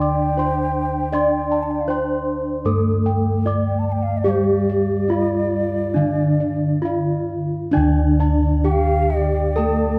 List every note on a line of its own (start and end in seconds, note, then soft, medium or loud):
0.00 1.84 D3 medium
0.00 1.12 D4 medium
0.00 0.38 D5 medium
0.00 1.64 G5 loud
0.00 0.42 D6 soft
0.37 0.46 F4 soft
0.37 1.12 C5 medium
0.37 0.80 C6 medium
1.13 2.66 D4 medium
1.13 3.41 D5 medium
1.13 1.89 D5 medium
1.13 1.55 C6 medium
1.52 1.93 A5 medium
1.63 1.73 A5 medium
1.71 1.82 G5 medium
1.81 1.91 F5 medium
1.88 1.96 F4 soft
1.88 2.65 C5 medium
1.88 1.98 G5 medium
1.88 2.32 C6 soft
2.65 5.06 G2 medium
2.65 4.26 A3 medium
2.65 3.45 A4 medium
2.65 3.10 D6 soft
3.06 3.50 G5 medium
3.45 3.53 F4 soft
3.45 4.27 D5 medium
3.45 3.91 D6 soft
3.66 3.81 G5 medium
3.79 3.87 A5 medium
3.88 3.94 A5 medium
3.92 4.04 G5 medium
4.03 4.19 F5 medium
4.18 4.31 D5 medium
4.24 5.95 G3 medium
4.24 5.09 G4 medium
4.24 6.79 G4 medium
4.24 4.73 F5 medium
4.30 4.46 C5 medium
4.45 7.30 D5 loud
4.70 5.16 D5 medium
5.08 5.16 F4 soft
5.08 5.95 F4 medium
5.08 5.58 F5 soft
5.94 8.61 D3 medium
5.94 7.73 D3 medium
5.94 6.83 D4 medium
5.94 6.45 F5 medium
6.40 6.89 D5 soft
6.82 7.73 F4 medium
6.82 6.91 F4 soft
6.82 7.34 F5 medium
7.71 9.57 D3 medium
7.71 9.99 D4 medium
7.71 8.65 D4 medium
7.71 8.16 D5 medium
7.71 8.25 G5 medium
7.77 9.99 D2 loud
8.20 8.62 D5 medium
8.20 8.71 A5 medium
8.64 8.72 F4 soft
8.64 9.56 G4 medium
8.64 9.07 G5 medium
8.64 9.16 G5 medium
8.64 8.73 G5 loud
8.72 9.18 F5 loud
9.10 9.53 G5 medium
9.17 9.99 D5 loud
9.56 9.99 A3 medium
9.56 9.99 A4 medium
9.56 9.99 G5 medium
9.56 9.99 A5 medium